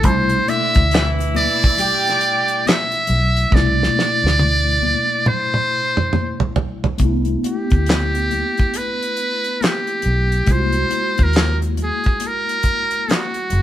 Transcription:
0.02 0.40 C2 loud
0.02 3.48 B2 medium
0.02 3.47 A3 medium
0.02 0.51 C5 loud
0.02 kick loud
0.02 closed hi-hat medium
0.02 muted conga soft
0.07 3.49 D4 medium
0.07 3.51 E4 medium
0.29 closed hi-hat soft
0.29 muted conga soft
0.48 0.83 D3 medium
0.48 0.83 D4 medium
0.48 1.13 E5 loud
0.48 closed hi-hat medium
0.48 high conga medium
0.74 1.46 D2 loud
0.74 kick loud
0.74 closed hi-hat soft
0.91 1.75 E3 medium
0.91 1.75 E4 loud
0.91 snare loud
0.91 clap loud
0.91 closed hi-hat medium
1.19 closed hi-hat medium
1.19 muted conga soft
1.35 2.69 D5 loud
1.35 closed hi-hat medium
1.35 high conga medium
1.35 low conga medium
1.62 kick loud
1.62 closed hi-hat soft
1.78 2.89 G3 loud
1.78 2.89 G4 loud
1.78 closed hi-hat medium
1.78 muted conga soft
1.78 low conga medium
2.05 snare soft
2.05 closed hi-hat soft
2.05 muted conga soft
2.21 closed hi-hat medium
2.48 closed hi-hat medium
2.66 3.56 E5 medium
2.66 snare loud
2.66 clap medium
2.66 closed hi-hat medium
2.66 high conga medium
2.92 closed hi-hat soft
2.92 muted conga soft
3.07 3.44 B1 medium
3.07 closed hi-hat medium
3.07 low conga medium
3.37 closed hi-hat soft
3.51 3.88 C2 loud
3.51 6.96 B2 medium
3.51 6.95 A3 medium
3.51 5.29 D5 loud
3.51 kick loud
3.51 muted conga soft
3.55 6.97 D4 medium
3.55 6.99 E4 medium
3.55 snare medium
3.83 snare medium
3.95 snare medium
3.95 high conga medium
4.24 4.94 D2 medium
4.24 snare medium
4.39 high tom medium
4.83 high conga medium
4.83 low conga medium
5.26 6.57 C5 loud
5.26 mid tom medium
5.26 muted conga soft
5.26 low conga medium
5.54 mid tom medium
5.97 mid tom medium
6.13 mid tom medium
6.13 muted conga soft
6.13 high conga medium
6.40 floor tom medium
6.40 muted conga soft
6.56 floor tom loud
6.56 low conga medium
6.84 floor tom loud
6.98 7.35 C2 loud
6.98 10.43 A3 medium
6.98 10.44 B3 medium
6.98 kick medium
6.98 closed hi-hat medium
6.98 muted conga soft
7.03 10.45 D4 medium
7.03 10.46 E4 medium
7.25 closed hi-hat soft
7.25 muted conga soft
7.44 8.79 G4 medium
7.44 closed hi-hat medium
7.44 high conga medium
7.70 8.42 D2 medium
7.70 kick medium
7.70 closed hi-hat soft
7.86 snare loud
7.86 clap medium
7.86 closed hi-hat medium
8.15 closed hi-hat soft
8.15 muted conga soft
8.31 closed hi-hat medium
8.31 high conga medium
8.31 low conga medium
8.57 kick medium
8.57 closed hi-hat soft
8.74 9.66 B4 loud
8.74 closed hi-hat medium
9.03 closed hi-hat soft
9.17 closed hi-hat medium
9.44 closed hi-hat soft
9.61 10.54 G4 medium
9.61 snare loud
9.61 clap medium
9.61 closed hi-hat medium
9.61 high conga medium
9.87 closed hi-hat soft
10.02 10.40 B1 medium
10.02 closed hi-hat medium
10.02 low conga medium
10.32 closed hi-hat soft
10.46 10.83 C2 medium
10.46 13.62 G#3 medium
10.46 13.62 A#3 medium
10.46 kick loud
10.46 closed hi-hat medium
10.50 13.62 E4 medium
10.50 10.58 F4 soft
10.50 11.25 C5 loud
10.60 13.62 F#4 medium
10.72 closed hi-hat soft
10.72 muted conga soft
10.91 closed hi-hat medium
10.91 high conga medium
11.18 11.89 D#2 medium
11.18 kick medium
11.18 closed hi-hat soft
11.23 11.58 A#4 loud
11.33 snare loud
11.33 clap loud
11.33 closed hi-hat medium
11.33 muted conga soft
11.62 closed hi-hat soft
11.62 muted conga soft
11.77 closed hi-hat medium
11.77 high conga medium
11.77 low conga medium
11.83 12.28 G#4 medium
12.04 kick medium
12.04 closed hi-hat soft
12.20 closed hi-hat medium
12.20 muted conga soft
12.27 13.15 A#4 loud
12.49 closed hi-hat soft
12.63 kick medium
12.63 closed hi-hat medium
12.91 closed hi-hat soft
13.09 snare loud
13.09 clap medium
13.09 closed hi-hat medium
13.09 muted conga soft
13.09 high conga medium
13.13 13.62 F#4 medium
13.34 closed hi-hat soft
13.34 muted conga soft
13.50 13.62 F#1 medium
13.50 closed hi-hat medium
13.50 low conga medium

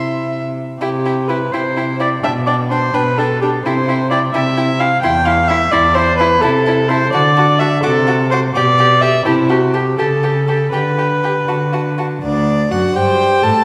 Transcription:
0.00 0.58 C3 soft
0.00 0.60 E4 soft
0.00 0.41 E5 soft
0.80 1.44 C3 medium
0.80 0.89 E4 soft
0.80 1.30 G4 medium
0.80 0.89 G5 soft
1.06 1.14 E4 soft
1.06 1.14 G5 soft
1.28 1.37 E4 soft
1.28 1.54 B4 medium
1.28 1.37 G5 soft
1.52 2.16 C3 soft
1.52 1.62 E4 soft
1.52 2.00 C5 medium
1.52 1.62 G5 soft
1.77 1.85 E4 soft
1.77 1.85 G5 soft
2.00 2.08 E4 soft
2.00 2.08 D5 medium
2.00 2.08 G5 soft
2.23 2.86 B2 medium
2.23 2.31 D4 soft
2.23 2.32 E5 medium
2.23 2.32 G5 soft
2.46 2.55 D4 soft
2.46 2.54 D5 medium
2.46 2.55 G5 soft
2.70 2.78 D4 soft
2.70 2.95 C5 medium
2.70 2.80 G5 soft
2.94 3.57 B2 medium
2.94 3.02 D4 soft
2.94 3.20 B4 medium
2.94 3.02 G5 medium
3.18 3.26 D4 soft
3.18 3.41 A4 medium
3.18 3.27 G5 soft
3.41 3.51 D4 soft
3.41 3.49 G4 medium
3.41 3.50 G5 soft
3.65 4.26 C3 medium
3.65 3.74 E4 medium
3.65 4.10 C5 medium
3.65 3.74 G5 soft
3.88 3.96 E4 soft
3.88 3.97 G5 soft
4.11 4.19 E4 soft
4.11 4.19 D5 medium
4.11 4.20 G5 soft
4.34 4.95 C3 medium
4.34 4.42 E4 soft
4.34 4.81 E5 medium
4.34 4.42 G5 medium
4.57 4.65 E4 soft
4.57 4.65 G5 soft
4.80 4.88 E4 soft
4.80 5.02 F5 medium
4.80 4.88 G5 soft
5.02 5.64 E2 medium
5.02 5.12 E4 medium
5.02 5.27 G5 medium
5.02 5.11 C6 medium
5.25 5.34 E4 soft
5.25 5.50 F5 medium
5.25 5.34 C6 medium
5.48 5.58 E4 medium
5.48 5.73 E5 medium
5.48 5.57 C6 soft
5.71 6.34 E2 medium
5.71 5.81 E4 medium
5.71 5.96 D5 medium
5.71 5.80 C6 medium
5.95 6.04 E4 soft
5.95 6.17 C5 medium
5.95 6.03 C6 medium
6.17 6.28 E4 medium
6.17 6.43 B4 medium
6.17 6.27 C6 soft
6.41 7.05 C3 medium
6.41 6.52 E4 medium
6.41 6.91 A4 medium
6.41 6.50 A5 medium
6.66 6.76 E4 medium
6.66 6.74 A5 medium
6.89 6.98 E4 medium
6.89 7.12 C5 medium
6.89 6.98 A5 soft
7.13 7.75 D3 medium
7.13 7.22 F#4 medium
7.13 7.60 D5 medium
7.13 7.21 A5 medium
7.37 7.45 F#4 medium
7.37 7.45 A5 medium
7.59 7.68 F#4 medium
7.59 7.82 E5 medium
7.59 7.68 A5 soft
7.83 8.46 C3 medium
7.83 7.91 F#4 medium
7.83 8.30 A4 medium
7.83 7.91 D6 medium
8.07 8.16 F#4 medium
8.07 8.15 D6 soft
8.31 8.41 F#4 medium
8.31 8.39 C5 medium
8.31 8.40 D6 medium
8.55 9.17 B2 medium
8.55 8.64 G4 medium
8.55 9.03 D5 medium
8.55 8.63 D6 medium
8.78 8.88 G4 medium
8.78 8.86 D6 medium
9.01 9.10 G4 medium
9.01 9.25 E5 medium
9.01 9.11 D6 soft
9.25 9.90 C3 medium
9.25 9.51 E4 medium
9.25 9.33 G4 medium
9.25 9.34 A5 medium
9.49 9.75 F#4 medium
9.49 9.58 G4 soft
9.49 9.57 A5 soft
9.74 9.82 G4 soft
9.74 9.98 G4 medium
9.74 9.82 A5 soft
9.98 10.64 C#3 medium
9.98 10.06 G4 soft
9.98 10.47 A4 medium
9.98 10.07 A5 medium
10.23 10.31 G4 soft
10.23 10.31 A5 soft
10.48 10.56 G4 soft
10.48 10.72 A4 medium
10.48 10.56 A5 soft
10.72 11.39 D3 medium
10.72 10.81 G4 soft
10.72 11.96 B4 medium
10.72 10.81 G5 soft
10.98 11.06 G4 soft
10.98 11.07 G5 soft
11.23 11.32 G4 soft
11.23 11.31 G5 soft
11.48 12.14 D3 soft
11.48 11.56 F#4 soft
11.48 11.56 A5 soft
11.73 11.81 F#4 soft
11.73 11.81 A5 soft
11.98 12.06 F#4 soft
11.98 12.06 A5 soft
12.23 12.68 D2 medium
12.23 12.68 D4 medium
12.23 12.73 D5 medium
12.71 12.79 F#2 medium
12.71 12.97 F#4 medium
12.71 12.98 F#5 medium
12.95 13.42 G2 medium
12.95 13.44 G4 medium
12.95 13.63 C5 medium
12.95 13.45 G5 medium
13.43 13.51 A2 medium
13.43 13.64 A4 medium
13.43 13.64 A5 medium

